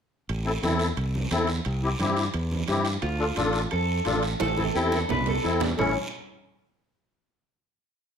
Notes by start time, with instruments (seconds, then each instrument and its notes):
0.29 fingered electric bass A1, high timbale, long guiro
0.45 accordion C4 E4 A4
0.62 fingered electric bass E2, accordion C4 E4 A4, high conga, high timbale, short guiro
0.79 high timbale, short guiro
0.97 fingered electric bass C2, high timbale, long guiro
1.15 high conga
1.31 fingered electric bass E2, accordion C4 E4 A4, high conga, high timbale, short guiro
1.47 high timbale, short guiro
1.65 fingered electric bass C2, high timbale, long guiro
1.83 accordion C4 E4 G4
1.99 fingered electric bass G2, accordion C4 E4 G4, high conga, high timbale, short guiro
2.17 high timbale, short guiro
2.34 fingered electric bass E2, high timbale, long guiro
2.51 high conga
2.68 fingered electric bass G2, accordion C4 E4 G4, high conga, high timbale, short guiro
2.85 high timbale, short guiro
3.02 fingered electric bass D2, clean electric guitar F4, high timbale, long guiro
3.18 accordion D4 F4 A4
3.35 fingered electric bass A1, accordion D4 F4 A4, high conga, high timbale, short guiro
3.53 high timbale, short guiro
3.71 fingered electric bass F2, clean electric guitar A4, high timbale, long guiro
4.05 fingered electric bass A1, accordion D4 F4 A4, high conga, high timbale, short guiro
4.23 high timbale, short guiro
4.40 fingered electric bass A1, clean electric guitar A4, high conga, high timbale, long guiro
4.57 accordion C4 E4 A4, high conga
4.74 fingered electric bass E2, accordion C4 E4 A4, clean electric guitar G4, short guiro
4.92 clean electric guitar A4, high conga, short guiro
5.09 fingered electric bass C2, clean electric guitar B4, low conga, low timbale, long guiro
5.26 clean electric guitar A4, low conga, low timbale
5.43 fingered electric bass E2, accordion C4 E4 A4, low timbale, short guiro
5.60 low conga, low timbale, short guiro
5.77 fingered electric bass A1, accordion C#4 E4 A4, clean electric guitar C#5, low conga, low timbale, long guiro